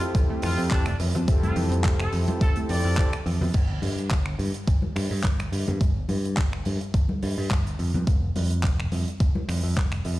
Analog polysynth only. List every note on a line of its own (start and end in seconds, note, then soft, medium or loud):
0.00 0.68 C4 medium
0.00 0.68 E4 medium
0.00 0.69 G4 medium
0.00 0.69 A4 medium
0.71 0.84 C4 medium
0.71 0.84 E4 medium
0.71 0.85 G4 medium
0.71 0.85 A4 medium
1.27 2.94 C4 medium
1.27 2.94 E4 medium
1.27 2.95 G4 medium
1.27 2.95 A4 medium
2.97 3.11 C4 medium
2.97 3.11 E4 medium
2.97 3.11 G4 medium
2.97 3.11 A4 medium